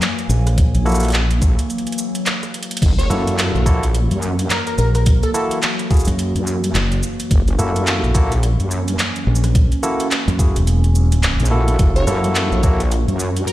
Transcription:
Already playing: E3 F#3 A#3 G#5
0.02 clap, closed hi-hat, shaker
0.19 closed hi-hat, shaker
0.29 A#1, shaker
0.47 cross-stick, closed hi-hat, shaker
0.58 kick, closed hi-hat, shaker
0.75 A#1, closed hi-hat, shaker
0.85 A#3 E4 F#4 A4, cross-stick, shaker
0.89 shaker
0.92 cross-stick, shaker
0.94 shaker
1.00 cross-stick, closed hi-hat, shaker
1.03 closed hi-hat, shaker
1.08 cross-stick, closed hi-hat
1.10 closed hi-hat
1.12 clap, closed hi-hat, shaker
1.31 closed hi-hat, shaker
1.42 kick, shaker
1.59 closed hi-hat, shaker
1.70 closed hi-hat, shaker
1.78 closed hi-hat
1.87 closed hi-hat, shaker
1.92 closed hi-hat
1.98 shaker
2.15 closed hi-hat, shaker
2.26 clap, closed hi-hat, shaker
2.43 cross-stick, closed hi-hat, shaker
2.54 closed hi-hat
2.63 closed hi-hat
2.71 closed hi-hat
2.77 closed hi-hat
2.82 F#1 F#4, kick, closed hi-hat, crash, shaker
2.99 C#5, closed hi-hat, shaker
3.10 F#2 A#3 E4 F#4 A4, cross-stick, shaker
3.27 closed hi-hat, shaker
3.39 clap, closed hi-hat, shaker
3.55 A#1, shaker
3.66 A#3 E4 F#4 A4, kick, shaker
3.83 closed hi-hat, shaker
3.95 closed hi-hat, shaker
4.11 F#2, closed hi-hat, shaker
4.22 shaker
4.39 closed hi-hat, shaker
4.50 A#4, clap, closed hi-hat, shaker
4.67 A#4, closed hi-hat, shaker
4.78 A#1 A#4, shaker
4.95 A#4, cross-stick, closed hi-hat, shaker
5.06 kick, closed hi-hat, shaker
5.23 A4, closed hi-hat, shaker
5.34 A#3 E4 F#4 A4, cross-stick, shaker
5.51 closed hi-hat, shaker
5.63 clap, closed hi-hat, shaker
5.79 closed hi-hat, shaker
5.90 A#3 E4 F#4 G#4, kick, shaker
5.94 shaker
5.96 shaker
5.99 shaker
6.05 F#2, closed hi-hat, shaker
6.08 shaker
6.19 closed hi-hat, shaker
6.35 F#2, closed hi-hat, shaker
6.47 shaker
6.64 closed hi-hat, shaker
6.75 F#1, clap, closed hi-hat, shaker
6.92 closed hi-hat, shaker
7.03 shaker
7.20 closed hi-hat, shaker
7.31 F#1 C#4, kick, closed hi-hat, shaker
7.48 closed hi-hat, shaker
7.59 F#2 A#3 E4 F#4 A4, cross-stick, shaker
7.76 closed hi-hat, shaker
7.87 clap, closed hi-hat, shaker
8.03 A#1, shaker
8.14 A#3 E4 F#4 A4, kick, shaker
8.32 closed hi-hat, shaker
8.43 closed hi-hat, shaker
8.59 F#2, closed hi-hat, shaker
8.71 shaker
8.88 closed hi-hat, shaker
8.99 clap, closed hi-hat, shaker
9.16 closed hi-hat, shaker
9.27 A#1
9.35 shaker
9.44 cross-stick, closed hi-hat, shaker
9.55 kick, closed hi-hat, shaker
9.72 closed hi-hat, shaker
9.83 A#3 E4 F#4 A4, cross-stick, shaker
10.00 closed hi-hat, shaker
10.11 clap, closed hi-hat, shaker
10.28 F#2, closed hi-hat, shaker
10.39 A#3 E4 F#4 G#4, kick, shaker
10.56 E1, closed hi-hat, shaker
10.67 closed hi-hat, shaker
10.84 closed hi-hat, shaker
10.95 shaker
11.12 closed hi-hat, shaker
11.23 clap, closed hi-hat, shaker
11.40 A#1, closed hi-hat, shaker
11.45 shaker
11.51 A#3 E4 F#4 A4
11.68 closed hi-hat, shaker
11.79 F#1 F#4, kick, closed hi-hat, shaker
11.96 C#5, closed hi-hat, shaker
12.07 F#2 A#3 E4 F#4 A4, cross-stick, shaker
12.24 closed hi-hat, shaker
12.35 clap, closed hi-hat, shaker
12.52 A#1, shaker
12.63 A#3 E4 F#4 A4, kick, shaker
12.80 closed hi-hat, shaker
12.91 closed hi-hat, shaker
13.08 F#2, closed hi-hat, shaker
13.19 shaker
13.37 closed hi-hat, shaker
13.47 A#4, closed hi-hat, shaker

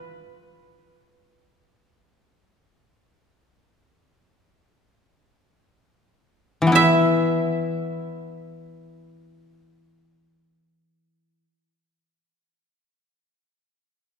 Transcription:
Already playing: E3 E4 F4 B4
6.62 E3
6.67 B3
6.72 E4 E5

